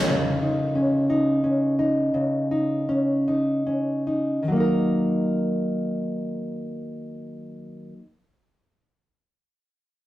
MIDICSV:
0, 0, Header, 1, 2, 480
1, 0, Start_track
1, 0, Key_signature, -6, "minor"
1, 0, Tempo, 685714
1, 57, Time_signature, 6, 3, 24, 8
1, 1499, Tempo, 754717
1, 2459, Tempo, 848656
1, 6084, End_track
2, 0, Start_track
2, 0, Title_t, "Steel-string acoustic guitar"
2, 0, Program_c, 0, 25
2, 0, Note_on_c, 0, 58, 60
2, 0, Note_on_c, 0, 63, 56
2, 0, Note_on_c, 0, 70, 58
2, 60, Note_on_c, 0, 49, 59
2, 101, Note_off_c, 0, 58, 0
2, 102, Note_off_c, 0, 70, 0
2, 291, Note_off_c, 0, 63, 0
2, 294, Note_on_c, 0, 63, 40
2, 527, Note_on_c, 0, 61, 45
2, 765, Note_off_c, 0, 63, 0
2, 768, Note_on_c, 0, 63, 57
2, 998, Note_off_c, 0, 61, 0
2, 1007, Note_on_c, 0, 61, 42
2, 1250, Note_off_c, 0, 63, 0
2, 1253, Note_on_c, 0, 63, 43
2, 1490, Note_off_c, 0, 49, 0
2, 1498, Note_on_c, 0, 49, 52
2, 1733, Note_off_c, 0, 63, 0
2, 1735, Note_on_c, 0, 63, 39
2, 1967, Note_off_c, 0, 61, 0
2, 1974, Note_on_c, 0, 61, 45
2, 2220, Note_off_c, 0, 63, 0
2, 2222, Note_on_c, 0, 63, 50
2, 2461, Note_off_c, 0, 61, 0
2, 2468, Note_on_c, 0, 61, 37
2, 2694, Note_off_c, 0, 63, 0
2, 2696, Note_on_c, 0, 63, 36
2, 2895, Note_off_c, 0, 49, 0
2, 2897, Note_on_c, 0, 51, 45
2, 2929, Note_on_c, 0, 54, 43
2, 2949, Note_off_c, 0, 61, 0
2, 2952, Note_on_c, 0, 58, 49
2, 2972, Note_off_c, 0, 63, 0
2, 2974, Note_on_c, 0, 63, 49
2, 2997, Note_on_c, 0, 70, 50
2, 4877, Note_off_c, 0, 51, 0
2, 4909, Note_off_c, 0, 54, 0
2, 4931, Note_off_c, 0, 58, 0
2, 4954, Note_off_c, 0, 63, 0
2, 4977, Note_off_c, 0, 70, 0
2, 6084, End_track
0, 0, End_of_file